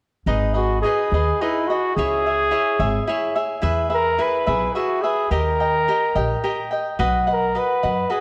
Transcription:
0.26 0.82 G#1 medium
0.26 0.56 D#4 medium
0.26 0.54 G#4 medium
0.26 0.53 B4 medium
0.26 0.53 D#5 medium
0.54 0.81 F#4 medium
0.54 0.83 G#4 soft
0.54 0.83 B4 soft
0.54 0.83 D#5 soft
0.82 1.12 D#4 soft
0.82 1.44 G#4 medium
0.82 1.12 G#4 medium
0.82 1.13 B4 medium
0.82 1.13 D#5 medium
1.12 1.31 D#2 medium
1.12 1.40 D#4 soft
1.12 1.40 G#4 medium
1.12 1.40 B4 soft
1.12 1.42 D#5 soft
1.41 1.69 D#4 medium
1.41 1.70 E4 medium
1.41 1.69 G#4 medium
1.41 1.69 B4 medium
1.41 1.69 D#5 medium
1.68 1.96 F#4 medium
1.68 1.97 G#4 soft
1.68 1.97 B4 soft
1.68 1.97 D#5 soft
1.96 2.51 C#2 medium
1.96 2.25 E4 medium
1.96 3.32 G#4 medium
1.96 2.26 G#4 medium
1.96 2.25 C#5 medium
1.96 2.25 E5 medium
2.26 2.50 G#4 soft
2.26 2.51 C#5 soft
2.26 2.51 E5 soft
2.51 2.80 E4 medium
2.51 2.79 G#4 medium
2.51 2.79 C#5 medium
2.51 2.78 E5 medium
2.79 2.98 G#1 medium
2.79 3.06 E4 soft
2.79 3.06 G#4 medium
2.79 3.08 C#5 medium
2.79 3.08 E5 medium
3.07 3.36 E4 medium
3.07 3.35 G#4 medium
3.07 3.35 C#5 medium
3.07 3.34 E5 medium
3.35 3.61 G#4 soft
3.35 3.62 C#5 medium
3.35 3.62 E5 soft
3.62 4.17 E2 medium
3.62 3.91 E4 medium
3.62 3.89 G#4 medium
3.62 3.89 B4 medium
3.62 3.89 E5 medium
3.90 4.17 G#4 soft
3.90 4.17 B4 soft
3.90 4.18 E5 soft
3.94 4.23 A#4 medium
4.18 4.46 E4 soft
4.18 4.46 G#4 medium
4.18 4.46 B4 medium
4.18 4.74 B4 medium
4.18 4.45 E5 medium
4.47 4.66 B1 medium
4.47 4.74 E4 soft
4.47 4.74 G#4 medium
4.47 4.75 B4 soft
4.47 4.75 E5 medium
4.75 5.03 E4 soft
4.75 5.03 F#4 medium
4.75 5.03 G#4 medium
4.75 5.03 B4 medium
4.75 5.02 E5 medium
5.02 5.31 G#4 medium
5.02 5.31 G#4 soft
5.02 5.31 B4 soft
5.02 5.31 E5 soft
5.31 5.85 D#2 medium
5.31 5.59 G4 medium
5.31 5.60 A#4 medium
5.31 6.68 A#4 medium
5.31 5.59 D#5 medium
5.31 5.59 G5 medium
5.60 5.87 A#4 soft
5.60 5.88 D#5 soft
5.60 5.88 G5 soft
5.88 6.15 G4 medium
5.88 6.14 A#4 medium
5.88 6.14 D#5 soft
5.88 6.15 G5 medium
6.15 6.34 A#1 medium
6.15 6.42 G4 soft
6.15 6.42 A#4 soft
6.15 6.43 D#5 medium
6.15 6.44 G5 medium
6.44 6.72 G4 medium
6.44 6.71 A#4 medium
6.44 6.71 D#5 medium
6.44 6.70 G5 medium
6.71 6.99 A#4 soft
6.71 6.98 D#5 soft
6.71 6.99 G5 soft
6.99 7.55 B1 medium
6.99 7.28 F#4 medium
6.99 7.26 B4 medium
6.99 7.26 D#5 medium
6.99 7.26 F#5 medium
7.27 7.54 B4 soft
7.27 7.54 D#5 soft
7.27 7.55 F#5 soft
7.33 7.59 A#4 medium
7.55 7.83 F#4 soft
7.55 7.82 B4 medium
7.55 8.13 B4 medium
7.55 7.82 D#5 soft
7.55 7.82 F#5 medium
7.83 8.02 F#2 medium
7.83 8.09 F#4 soft
7.83 8.08 B4 soft
7.83 8.09 D#5 soft
7.83 8.11 F#5 medium
8.10 8.20 F#4 soft
8.10 8.20 G#4 medium
8.10 8.20 B4 medium
8.10 8.20 D#5 medium
8.10 8.20 F#5 medium

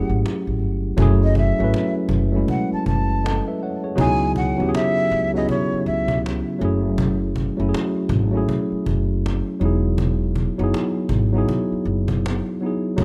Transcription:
0.00 0.97 F#3 medium
0.00 0.98 A3 medium
0.00 0.99 C#4 medium
0.00 1.00 E4 medium
0.00 1.00 G4 medium
0.00 1.00 G#4 medium
0.00 0.20 F#5 medium
0.08 0.21 G#1 medium
0.08 cajon slap soft
0.26 cajon slap medium
0.47 0.61 A1 medium
0.59 0.93 G1 medium
0.59 cajon slap soft
0.97 1.52 F#1 loud
0.97 1.53 F#3 loud
0.97 1.53 A3 loud
0.97 1.54 C#4 loud
0.97 cajon bass loud
1.01 1.55 E4 medium
1.01 1.55 G#4 loud
1.22 1.39 D#5 medium
1.22 cajon slap soft
1.35 1.94 E5 medium
1.35 cajon bass medium
1.59 1.72 G#1 medium
1.59 2.26 F#3 medium
1.59 2.27 A3 medium
1.59 2.27 C#4 medium
1.63 2.28 E4 medium
1.63 2.29 B4 loud
1.74 cajon slap loud
2.09 2.43 F#1 medium
2.09 cajon bass medium
2.32 3.67 F#3 medium
2.32 3.68 A3 medium
2.32 3.69 C#4 medium
2.32 cajon slap soft
2.36 3.25 G#3 loud
2.36 3.69 E4 medium
2.48 2.70 F#5 medium
2.48 cajon bass medium
2.72 2.85 A5 medium
2.72 muted upright bass stroke soft
2.86 3.40 F#1 medium
2.86 3.44 A5 medium
2.86 cajon bass medium
3.08 cajon slap soft
3.24 3.47 A4 medium
3.24 3.46 D#5 medium
3.24 cajon slap loud
3.48 3.61 B4 medium
3.48 3.60 E5 medium
3.60 3.83 C#5 medium
3.60 3.84 F#5 medium
3.60 cajon slap soft
3.84 4.00 G#4 medium
3.84 4.20 C#5 medium
3.95 4.52 C#2 medium
3.95 4.52 C#3 loud
3.95 4.52 F#3 loud
3.95 4.53 B3 medium
3.95 4.53 D#4 loud
3.95 cajon bass loud
3.99 4.54 E4 loud
3.99 4.55 G#4 loud
3.99 4.33 G#5 loud
4.36 4.70 F#5 medium
4.36 cajon bass medium
4.57 4.72 D#2 medium
4.57 5.25 C#3 medium
4.57 5.25 F#3 medium
4.57 5.26 B3 medium
4.57 5.26 C#4 medium
4.61 5.27 E4 medium
4.61 4.65 G4 medium
4.69 5.31 G#4 loud
4.75 5.31 E5 medium
4.75 cajon slap loud
5.11 5.44 C#2 loud
5.11 cajon slap soft
5.33 6.52 C#3 medium
5.33 6.52 F#3 medium
5.33 6.53 B3 medium
5.33 6.53 C#4 medium
5.33 5.48 D#5 medium
5.33 cajon slap soft
5.37 6.54 E4 medium
5.37 6.54 G#4 medium
5.49 5.83 C#5 medium
5.49 cajon bass medium
5.72 muted upright bass stroke soft
5.86 6.40 C#2 medium
5.86 6.20 E5 medium
5.86 cajon slap soft
6.08 cajon bass medium
6.26 cajon slap loud
6.59 7.48 F#1 loud
6.59 7.48 F#3 medium
6.59 7.49 A3 medium
6.59 7.50 C#4 medium
6.59 cajon slap soft
6.63 7.50 E4 medium
6.63 7.51 G#4 loud
6.98 cajon bass loud
7.23 cajon slap soft
7.36 cajon bass medium
7.57 7.71 F#1 medium
7.57 8.25 F#3 medium
7.57 8.26 A3 medium
7.57 8.26 C#4 medium
7.57 8.27 E4 medium
7.62 7.66 F#4 medium
7.69 8.31 G#4 medium
7.74 cajon slap loud
8.09 8.43 G#1 loud
8.09 cajon bass loud
8.31 9.58 F#3 medium
8.31 9.60 A3 medium
8.31 9.60 C#4 medium
8.31 cajon slap soft
8.35 9.61 E4 medium
8.35 9.62 G#4 loud
8.49 cajon bass medium
8.72 muted upright bass stroke soft
8.86 9.40 F#1 medium
8.86 cajon bass medium
9.09 cajon slap soft
9.26 cajon slap loud
9.60 10.48 E1 loud
9.60 10.49 F#3 medium
9.60 10.50 B3 medium
9.60 10.50 D#4 medium
9.60 cajon slap soft
9.64 10.51 E4 medium
9.64 10.52 G#4 loud
9.98 cajon bass loud
10.23 cajon slap soft
10.36 cajon bass medium
10.58 10.71 F#1 medium
10.58 11.26 F#3 medium
10.58 11.26 B3 medium
10.58 11.27 D#4 medium
10.62 11.28 E4 medium
10.62 11.28 G#4 loud
10.74 cajon slap loud
11.09 11.43 G#1 medium
11.09 cajon bass loud
11.33 12.52 F#3 medium
11.33 12.52 B3 medium
11.33 12.53 D#4 medium
11.33 cajon slap soft
11.37 12.54 E4 medium
11.37 12.54 G#4 loud
11.49 cajon bass medium
11.72 muted upright bass stroke medium
11.85 12.39 F#1 medium
11.85 cajon slap soft
12.08 cajon bass medium
12.26 cajon slap loud
12.60 12.95 F#3 medium
12.60 12.96 B3 medium
12.60 12.97 D#4 medium
12.60 cajon slap soft
12.65 12.98 E4 medium
12.65 12.98 G#4 medium
12.97 13.04 F#1 loud
12.97 13.04 F#3 loud
12.97 13.04 A3 loud
12.97 13.04 C#4 medium
12.97 cajon bass loud
13.01 13.04 E4 medium

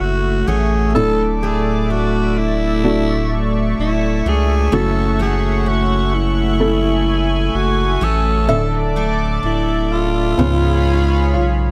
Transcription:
0.00 0.45 F#1 medium
0.00 0.95 F#2 medium
0.00 0.47 A3 medium
0.00 0.85 A3 medium
0.00 8.45 A3 medium
0.00 0.47 C#4 medium
0.00 0.86 E4 medium
0.00 0.47 F#4 medium
0.00 0.86 F#4 medium
0.00 0.50 F#4 medium
0.00 10.35 E5 medium
0.00 0.92 F#5 medium
0.00 0.92 C#6 medium
0.47 0.97 A1 medium
0.47 1.43 A3 medium
0.47 1.05 C#4 medium
0.47 0.96 F#4 medium
0.47 0.94 G#4 medium
0.94 3.75 D1 loud
0.94 2.33 A2 medium
0.94 2.75 A3 medium
0.94 2.75 D4 medium
0.94 2.75 E4 medium
0.94 1.29 A4 loud
0.94 4.46 A4 medium
0.94 4.69 D5 medium
0.94 2.82 D6 medium
1.43 4.26 A3 medium
1.43 1.89 D4 medium
1.43 1.93 G#4 medium
1.90 4.25 D4 medium
1.90 2.39 F#4 medium
2.38 3.52 E4 loud
2.84 4.63 A3 medium
2.84 4.63 D4 medium
2.84 4.64 F#4 medium
2.84 8.45 C#6 medium
3.79 4.23 D1 loud
3.79 4.30 E4 medium
4.25 4.69 C#2 medium
4.25 5.19 A3 medium
4.25 4.83 D4 soft
4.25 4.76 G#4 medium
4.72 7.50 F#1 loud
4.72 8.49 F#2 medium
4.72 6.09 C#3 medium
4.72 6.50 A3 medium
4.72 6.51 E4 medium
4.72 5.19 F#4 medium
4.72 6.51 F#4 medium
4.72 5.20 A4 loud
4.72 6.59 F#5 medium
5.19 8.01 A3 medium
5.19 5.65 C#4 medium
5.19 8.01 F#4 medium
5.19 5.70 G#4 medium
5.66 8.01 C#4 medium
5.66 6.16 F#4 medium
6.15 7.57 E4 loud
6.60 8.39 A3 medium
6.60 8.40 E4 medium
6.60 8.40 A4 medium
6.60 8.47 G#5 medium
7.54 7.99 F#1 loud
7.54 8.05 F#4 medium
8.01 8.50 A1 loud
8.01 8.58 A3 medium
8.01 8.58 C#4 medium
8.01 8.49 F#4 medium
8.01 8.97 A4 medium
8.48 9.39 D1 loud
8.48 9.87 A2 medium
8.48 10.38 D3 medium
8.48 10.29 A3 medium
8.48 10.29 D4 medium
8.48 10.36 A4 medium
8.48 8.96 A4 medium
8.48 10.36 D5 medium
8.48 10.29 E5 medium
8.48 10.36 D6 medium
8.96 10.48 A3 medium
8.96 9.42 D4 medium
8.96 10.49 A4 medium
9.43 10.35 D1 medium
9.43 10.48 D4 medium
9.43 9.94 E4 loud
9.92 11.71 F4 loud
10.38 11.37 C#2 loud
10.38 11.71 G#2 medium
10.38 11.71 C#3 medium
10.38 11.71 B3 medium
10.38 11.71 C#4 medium
10.38 11.32 F4 medium
10.38 11.71 G#4 medium
10.38 11.71 C#5 medium
10.38 11.71 F5 medium
10.38 11.71 B5 medium
11.34 11.71 B1 medium
11.34 11.71 F4 medium

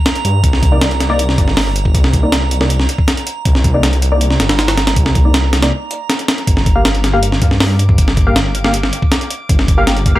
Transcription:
0.00 6.48 A#5 medium
0.06 snare loud
0.06 closed hi-hat medium
0.15 closed hi-hat soft
0.25 0.42 G2 medium
0.25 closed hi-hat medium
0.44 1.37 C2 medium
0.44 kick loud
0.44 closed hi-hat medium
0.53 snare soft
0.63 kick medium
0.63 closed hi-hat medium
0.72 0.86 A#3 medium
0.72 0.86 D#4 medium
0.72 0.86 D5 medium
0.81 snare loud
0.81 closed hi-hat medium
0.91 closed hi-hat soft
1.00 snare soft
1.00 closed hi-hat medium
1.10 1.23 A#3 medium
1.10 1.23 D#4 medium
1.10 1.23 D5 loud
1.19 closed hi-hat medium
1.29 snare soft
1.38 1.93 G1 loud
1.38 kick medium
1.38 closed hi-hat medium
1.48 snare soft
1.57 snare loud
1.57 open hi-hat medium
1.76 closed hi-hat medium
1.85 kick medium
1.94 2.87 C2 medium
1.94 kick loud
1.94 closed hi-hat medium
2.04 snare medium
2.13 kick medium
2.13 closed hi-hat medium
2.23 2.31 A#3 medium
2.23 2.31 D#4 medium
2.23 2.31 D5 medium
2.32 snare loud
2.32 closed hi-hat medium
2.51 closed hi-hat medium
2.61 2.69 A#3 medium
2.61 2.69 D#4 medium
2.61 2.69 D5 medium
2.61 snare medium
2.70 closed hi-hat medium
2.80 snare soft
2.89 closed hi-hat medium
2.98 kick medium
3.08 snare loud
3.08 closed hi-hat medium
3.17 closed hi-hat soft
3.27 closed hi-hat medium
3.45 4.38 C2 medium
3.45 kick loud
3.45 closed hi-hat medium
3.55 snare soft
3.64 kick loud
3.64 closed hi-hat medium
3.74 3.88 A#3 medium
3.74 3.88 D#4 medium
3.74 3.88 D5 medium
3.83 snare loud
3.83 closed hi-hat medium
3.93 closed hi-hat soft
4.02 closed hi-hat medium
4.12 4.25 A#3 loud
4.12 4.25 D#4 medium
4.12 4.25 D5 loud
4.21 closed hi-hat medium
4.31 snare soft
4.40 4.95 G1 loud
4.40 snare loud
4.40 closed hi-hat medium
4.49 snare loud
4.49 closed hi-hat medium
4.59 snare loud
4.59 closed hi-hat medium
4.68 snare loud
4.68 closed hi-hat medium
4.78 snare loud
4.78 closed hi-hat medium
4.87 snare loud
4.87 closed hi-hat medium
4.96 5.72 C2 medium
4.96 kick loud
4.96 closed hi-hat medium
5.06 snare medium
5.15 kick medium
5.15 closed hi-hat medium
5.25 5.33 A#3 medium
5.25 5.33 D#4 medium
5.25 5.33 D5 medium
5.34 snare loud
5.34 closed hi-hat medium
5.53 snare loud
5.53 closed hi-hat medium
5.62 5.71 A#3 medium
5.62 5.71 D#4 medium
5.62 5.71 D5 medium
5.62 snare loud
5.62 closed hi-hat medium
5.91 closed hi-hat medium
6.10 snare loud
6.10 closed hi-hat medium
6.19 closed hi-hat soft
6.28 snare loud
6.28 closed hi-hat medium
6.38 closed hi-hat soft
6.47 7.40 G1 loud
6.47 10.19 D6 medium
6.47 kick loud
6.47 closed hi-hat medium
6.57 snare soft
6.66 kick loud
6.66 closed hi-hat medium
6.76 6.89 A#3 medium
6.76 6.89 G4 medium
6.76 6.89 F5 medium
6.85 snare loud
6.85 closed hi-hat medium
6.95 closed hi-hat soft
7.04 snare soft
7.04 closed hi-hat medium
7.13 7.27 A#3 medium
7.13 7.27 G4 medium
7.13 7.27 F5 loud
7.23 closed hi-hat medium
7.32 snare soft
7.42 7.97 G2 loud
7.42 kick medium
7.42 closed hi-hat medium
7.51 snare soft
7.60 snare loud
7.60 open hi-hat medium
7.79 closed hi-hat medium
7.89 kick medium
7.98 8.91 G1 loud
7.98 kick loud
7.98 closed hi-hat medium
8.08 snare medium
8.17 kick medium
8.17 closed hi-hat medium
8.27 8.35 A#3 medium
8.27 8.35 G4 medium
8.27 8.35 F5 medium
8.36 snare loud
8.36 closed hi-hat medium
8.55 closed hi-hat medium
8.64 8.73 A#3 medium
8.64 8.73 G4 medium
8.64 8.73 F5 medium
8.64 snare medium
8.74 closed hi-hat medium
8.83 snare soft
8.93 closed hi-hat medium
9.02 kick medium
9.12 snare loud
9.12 closed hi-hat medium
9.21 closed hi-hat soft
9.30 closed hi-hat medium
9.49 10.19 G1 loud
9.49 kick loud
9.49 closed hi-hat medium
9.59 snare soft
9.68 kick medium
9.68 closed hi-hat medium
9.78 9.91 A#3 medium
9.78 9.91 G4 medium
9.78 9.91 F5 medium
9.87 snare loud
9.87 closed hi-hat medium
9.97 closed hi-hat soft
10.06 kick medium
10.06 closed hi-hat medium
10.15 10.19 A#3 medium
10.15 10.19 G4 medium
10.15 10.19 F5 loud

